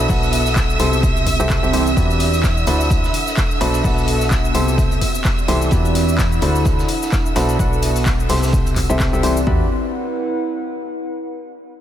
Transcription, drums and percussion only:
0.08 kick, open hi-hat, tambourine, shaker
0.23 shaker
0.33 closed hi-hat, open hi-hat, tambourine
0.46 snare, tambourine, shaker
0.56 kick, snare, clap, closed hi-hat, shaker
0.70 shaker
0.79 closed hi-hat, open hi-hat, tambourine
0.93 tambourine, shaker
1.03 kick, closed hi-hat, tambourine, shaker
1.17 closed hi-hat, shaker
1.27 kick, closed hi-hat, open hi-hat, tambourine
1.40 tambourine, shaker
1.50 kick, snare, clap, closed hi-hat, tambourine, shaker
1.64 shaker
1.73 closed hi-hat, open hi-hat, tambourine
1.86 tambourine, shaker
1.97 kick, closed hi-hat, tambourine, shaker
2.10 closed hi-hat, shaker
2.20 snare, closed hi-hat, open hi-hat, tambourine
2.33 tambourine, shaker
2.43 kick, snare, clap, closed hi-hat, tambourine, shaker
2.57 shaker
2.67 closed hi-hat, open hi-hat, tambourine
2.81 tambourine, shaker
2.90 kick, closed hi-hat, tambourine, shaker
3.04 snare, shaker
3.14 closed hi-hat, open hi-hat, tambourine
3.27 snare, tambourine, shaker
3.37 kick, snare, clap, closed hi-hat, tambourine, shaker
3.51 shaker
3.61 closed hi-hat, open hi-hat, tambourine
3.74 tambourine, shaker
3.84 kick, open hi-hat, tambourine, shaker
3.98 shaker
4.08 closed hi-hat, open hi-hat, tambourine
4.21 snare, tambourine, shaker
4.31 kick, snare, clap, closed hi-hat, tambourine, shaker
4.45 shaker
4.55 closed hi-hat, open hi-hat, tambourine
4.68 tambourine, shaker
4.78 kick, closed hi-hat, tambourine, shaker
4.91 closed hi-hat, shaker
5.01 kick, closed hi-hat, open hi-hat, tambourine
5.14 tambourine, shaker
5.24 kick, snare, clap, closed hi-hat, tambourine, shaker
5.38 shaker
5.48 closed hi-hat, open hi-hat, tambourine
5.61 tambourine, shaker
5.71 kick, closed hi-hat, tambourine, shaker
5.85 closed hi-hat, shaker
5.95 snare, closed hi-hat, open hi-hat, tambourine
6.08 tambourine, shaker
6.18 kick, snare, clap, closed hi-hat, tambourine, shaker
6.32 shaker
6.41 closed hi-hat, open hi-hat, tambourine
6.55 tambourine, shaker
6.65 kick, closed hi-hat, tambourine, shaker
6.79 snare, shaker
6.88 closed hi-hat, open hi-hat, tambourine
7.02 snare, tambourine, shaker
7.12 kick, snare, clap, closed hi-hat, tambourine, shaker
7.26 shaker
7.36 snare, closed hi-hat, open hi-hat, tambourine
7.49 tambourine, shaker
7.59 kick, closed hi-hat, tambourine, shaker
7.73 shaker
7.82 closed hi-hat, open hi-hat, tambourine
7.96 snare, open hi-hat, tambourine, shaker
8.06 kick, snare, clap, closed hi-hat, tambourine, shaker
8.20 shaker
8.29 snare, closed hi-hat, open hi-hat, tambourine
8.36 snare, closed hi-hat
8.42 snare, closed hi-hat, tambourine, shaker
8.47 snare, closed hi-hat
8.53 kick, closed hi-hat, tambourine, shaker
8.66 closed hi-hat, shaker
8.76 kick, clap, closed hi-hat, open hi-hat, tambourine
8.90 tambourine, shaker
9.00 kick, snare, clap, closed hi-hat, tambourine, shaker
9.13 shaker
9.23 closed hi-hat, open hi-hat, tambourine
9.37 tambourine, shaker
9.47 kick, floor tom

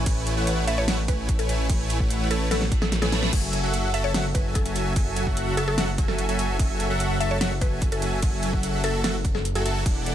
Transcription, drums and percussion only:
0.06 kick, closed hi-hat, crash
0.27 closed hi-hat
0.47 closed hi-hat
0.68 closed hi-hat
0.88 snare, closed hi-hat, crash
1.08 kick, closed hi-hat
1.29 kick, closed hi-hat
1.39 closed hi-hat
1.49 closed hi-hat
1.70 kick, closed hi-hat, crash
1.90 closed hi-hat
2.00 kick
2.10 closed hi-hat
2.31 closed hi-hat
2.51 snare, closed hi-hat, crash
2.61 snare
2.72 kick, closed hi-hat
2.82 snare
2.92 snare, closed hi-hat
3.02 snare, closed hi-hat
3.12 snare, closed hi-hat
3.23 snare
3.33 kick, closed hi-hat, crash
3.53 closed hi-hat
3.74 closed hi-hat
3.94 closed hi-hat
4.14 snare, closed hi-hat, crash
4.35 kick, closed hi-hat
4.55 kick, closed hi-hat
4.66 closed hi-hat
4.76 closed hi-hat
4.96 kick, closed hi-hat, crash
5.16 closed hi-hat
5.27 kick
5.37 closed hi-hat
5.57 closed hi-hat
5.78 snare, closed hi-hat, crash
5.98 kick, closed hi-hat
6.08 snare
6.18 closed hi-hat
6.29 closed hi-hat
6.39 closed hi-hat
6.59 kick, closed hi-hat, crash
6.80 closed hi-hat
7.00 closed hi-hat
7.21 closed hi-hat
7.41 snare, closed hi-hat, crash
7.61 kick, closed hi-hat
7.82 kick, closed hi-hat
7.92 closed hi-hat
8.02 closed hi-hat
8.22 kick, closed hi-hat, crash
8.43 closed hi-hat
8.53 kick
8.63 closed hi-hat
8.84 closed hi-hat
9.04 snare, closed hi-hat, crash
9.25 kick, closed hi-hat
9.35 snare
9.45 closed hi-hat
9.55 closed hi-hat
9.66 closed hi-hat
9.86 kick, closed hi-hat, crash
10.06 closed hi-hat

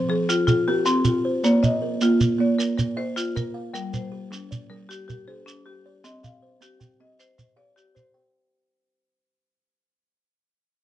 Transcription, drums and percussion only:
0.30 shekere
0.48 shekere
0.86 shekere
1.05 shekere
1.44 shekere
1.64 shekere
2.01 shekere
2.21 shekere
2.60 shekere
2.79 shekere
3.17 shekere
3.37 shekere
3.75 shekere
3.94 shekere
4.33 shekere
4.52 shekere
4.91 shekere
5.10 shekere
5.48 shekere
6.05 shekere
6.24 shekere
6.62 shekere
6.81 shekere
7.20 shekere
7.39 shekere
7.77 shekere
7.96 shekere

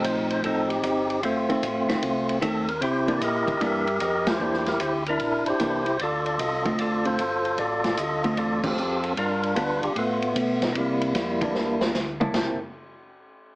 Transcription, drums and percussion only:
0.04 kick, hi-hat pedal, ride
0.30 ride
0.44 kick, ride
0.70 ride
0.83 kick, hi-hat pedal, ride
1.10 ride
1.23 kick, ride
1.50 ride
1.63 kick, hi-hat pedal, ride
1.89 snare, ride
2.02 kick, ride
2.29 ride
2.42 kick, hi-hat pedal, ride
2.68 ride
2.82 kick, ride
3.08 ride
3.21 kick, hi-hat pedal, ride
3.48 kick, ride
3.61 kick, ride
3.87 ride
4.00 kick, hi-hat pedal, ride
4.27 snare, ride
4.53 snare
4.66 snare, ride
4.80 kick, hi-hat pedal, ride
5.06 ride
5.20 kick, ride
5.46 ride
5.59 kick, hi-hat pedal, ride
5.86 ride
5.99 kick, ride
6.26 ride
6.39 kick, hi-hat pedal, ride
6.65 kick, ride
6.79 kick, ride
7.05 ride
7.18 kick, hi-hat pedal, ride
7.45 ride
7.58 kick, ride
7.84 snare, ride
7.97 kick, hi-hat pedal, ride
8.24 ride
8.37 kick, ride
8.63 kick, crash
8.77 hi-hat pedal
9.04 ride
9.17 kick, ride
9.43 ride
9.56 kick, hi-hat pedal, ride
9.83 ride
9.96 kick, ride
10.22 ride
10.36 kick, hi-hat pedal, ride
10.62 snare, ride
10.75 kick, ride
11.01 ride
11.15 kick, snare, hi-hat pedal, ride
11.41 kick, ride
11.55 snare
11.81 snare
11.94 snare, hi-hat pedal
12.21 mid tom
12.34 snare, floor tom, crash

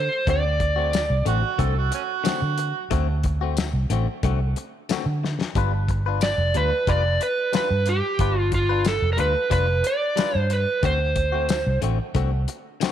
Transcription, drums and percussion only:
0.27 kick, closed hi-hat
0.60 kick, closed hi-hat
0.93 snare, closed hi-hat, tambourine
1.26 closed hi-hat
1.59 kick, closed hi-hat
1.92 closed hi-hat
2.25 snare, closed hi-hat, tambourine
2.58 closed hi-hat
2.91 kick, closed hi-hat
3.24 kick, closed hi-hat
3.57 snare, closed hi-hat, tambourine
3.90 closed hi-hat
4.23 kick, closed hi-hat
4.56 closed hi-hat
4.89 snare, closed hi-hat, tambourine
5.24 snare
5.41 snare
5.55 kick, closed hi-hat
5.88 kick, closed hi-hat
6.21 snare, closed hi-hat, tambourine
6.54 closed hi-hat
6.87 kick, closed hi-hat
7.21 closed hi-hat
7.53 snare, closed hi-hat, tambourine
7.86 closed hi-hat
8.19 kick, closed hi-hat
8.52 kick, closed hi-hat
8.85 snare, closed hi-hat, tambourine
9.18 closed hi-hat
9.51 kick, closed hi-hat
9.84 closed hi-hat
10.17 snare, closed hi-hat, tambourine
10.50 closed hi-hat
10.83 kick, closed hi-hat
11.16 kick, closed hi-hat
11.49 snare, closed hi-hat, tambourine
11.82 closed hi-hat
12.15 kick, closed hi-hat
12.48 closed hi-hat
12.81 snare, closed hi-hat, tambourine

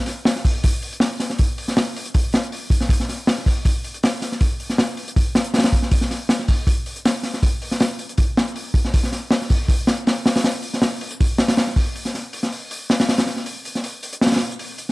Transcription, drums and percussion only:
0.06 snare, open hi-hat
0.25 snare, open hi-hat
0.36 snare
0.45 kick, open hi-hat
0.63 kick, open hi-hat
0.82 open hi-hat
0.93 closed hi-hat
1.00 snare, open hi-hat
1.20 snare, open hi-hat
1.30 snare
1.38 kick, open hi-hat
1.58 open hi-hat
1.68 snare
1.77 snare, open hi-hat
1.96 open hi-hat
2.06 closed hi-hat
2.14 kick, open hi-hat
2.32 snare, open hi-hat
2.43 closed hi-hat
2.52 open hi-hat
2.70 kick, open hi-hat
2.81 snare
2.89 kick, open hi-hat
3.00 snare
3.09 snare, open hi-hat
3.27 snare, open hi-hat
3.38 snare
3.46 kick, open hi-hat
3.65 kick, open hi-hat
3.84 open hi-hat
3.94 closed hi-hat
4.03 snare, open hi-hat
4.22 snare, open hi-hat
4.32 snare
4.40 kick, open hi-hat
4.60 open hi-hat
4.70 snare
4.78 snare, open hi-hat
4.97 open hi-hat
5.08 closed hi-hat
5.16 kick, open hi-hat
5.35 snare, open hi-hat
5.44 closed hi-hat
5.54 snare, open hi-hat
5.58 snare, open hi-hat
5.63 snare, open hi-hat
5.72 kick, open hi-hat
5.82 snare
5.91 kick, open hi-hat
6.01 snare
6.11 snare, open hi-hat
6.29 snare, open hi-hat
6.39 snare
6.48 kick, open hi-hat
6.67 kick, open hi-hat
6.86 open hi-hat
6.96 closed hi-hat
7.05 snare, open hi-hat
7.23 snare, open hi-hat
7.34 snare
7.43 kick, open hi-hat
7.62 open hi-hat
7.71 snare
7.80 snare, open hi-hat
7.99 open hi-hat
8.09 closed hi-hat
8.17 kick, open hi-hat
8.37 snare, open hi-hat
8.47 closed hi-hat
8.56 open hi-hat
8.74 kick, open hi-hat
8.85 snare
8.94 kick, open hi-hat
9.03 snare
9.12 snare, open hi-hat
9.31 snare, open hi-hat
9.42 snare
9.50 kick, open hi-hat
9.68 kick, open hi-hat
9.87 snare, open hi-hat
9.97 closed hi-hat
10.07 snare, open hi-hat
10.26 snare, open hi-hat
10.35 snare, open hi-hat
10.44 snare, open hi-hat
10.62 open hi-hat
10.74 snare
10.82 snare, open hi-hat
11.01 open hi-hat
11.11 closed hi-hat
11.20 kick, open hi-hat
11.38 snare, open hi-hat
11.48 snare, open hi-hat
11.57 snare, open hi-hat
11.67 snare
11.76 kick, open hi-hat
11.95 open hi-hat
12.05 snare
12.14 snare, open hi-hat
12.33 open hi-hat
12.43 snare
12.52 open hi-hat
12.71 open hi-hat
12.90 snare, open hi-hat
12.99 snare, open hi-hat
13.09 snare, open hi-hat
13.17 snare, open hi-hat
13.27 snare, open hi-hat
13.37 snare
13.46 open hi-hat
13.65 open hi-hat
13.75 snare
13.84 open hi-hat
14.03 open hi-hat
14.12 closed hi-hat
14.21 snare, open hi-hat
14.26 snare, open hi-hat
14.32 snare, open hi-hat
14.36 snare, open hi-hat
14.41 open hi-hat
14.51 closed hi-hat
14.59 open hi-hat
14.78 open hi-hat

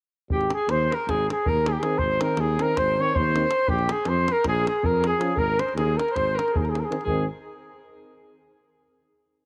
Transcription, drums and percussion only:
0.30 davul low
0.41 davul high
0.50 davul high
0.69 davul high
0.92 davul high
1.09 davul high, davul low
1.30 davul high
1.46 davul low
1.66 davul high
1.83 davul high
1.99 davul low
2.21 davul high
2.37 davul high
2.59 davul high
2.77 davul high, davul low
3.16 davul low
3.36 davul high
3.51 davul high
3.68 davul low
3.79 davul high
3.89 davul high
4.05 davul high
4.28 davul high
4.44 davul high, davul low
4.67 davul high
4.84 davul low
5.04 davul high
5.21 davul high
5.37 davul low
5.59 davul high
5.69 davul high
5.78 davul high
5.99 davul high
6.08 davul high
6.16 davul high, davul low
6.39 davul high
6.48 davul high
6.56 davul low
6.65 davul high
6.75 davul high
6.92 davul high
7.01 davul high
7.07 davul low

